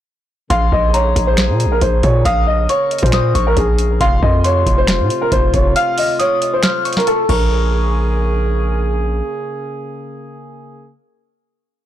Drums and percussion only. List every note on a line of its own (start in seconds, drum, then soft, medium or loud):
0.50 kick loud
0.50 closed hi-hat medium
0.72 kick medium
0.94 closed hi-hat medium
1.16 kick medium
1.16 closed hi-hat medium
1.37 finger snap loud
1.37 snare loud
1.37 closed hi-hat medium
1.60 closed hi-hat medium
1.81 kick medium
1.81 closed hi-hat medium
2.03 kick medium
2.03 closed hi-hat medium
2.25 kick loud
2.25 closed hi-hat medium
2.69 closed hi-hat medium
2.91 closed hi-hat medium
2.98 closed hi-hat medium
3.03 kick medium
3.03 closed hi-hat medium
3.12 finger snap medium
3.12 snare loud
3.12 closed hi-hat medium
3.35 kick loud
3.35 closed hi-hat medium
3.57 kick loud
3.57 closed hi-hat medium
3.78 closed hi-hat medium
4.01 kick loud
4.01 closed hi-hat medium
4.23 kick medium
4.44 closed hi-hat medium
4.66 kick medium
4.66 closed hi-hat medium
4.87 finger snap loud
4.87 snare loud
4.87 closed hi-hat medium
5.10 closed hi-hat medium
5.32 kick loud
5.32 closed hi-hat medium
5.54 kick loud
5.54 closed hi-hat medium
5.76 closed hi-hat medium
5.98 open hi-hat medium
6.20 closed hi-hat medium
6.42 closed hi-hat medium
6.63 finger snap medium
6.63 snare loud
6.63 closed hi-hat medium
6.85 closed hi-hat medium
6.93 closed hi-hat medium
6.97 snare medium
6.97 closed hi-hat medium
7.07 closed hi-hat medium
7.29 kick loud
7.29 crash medium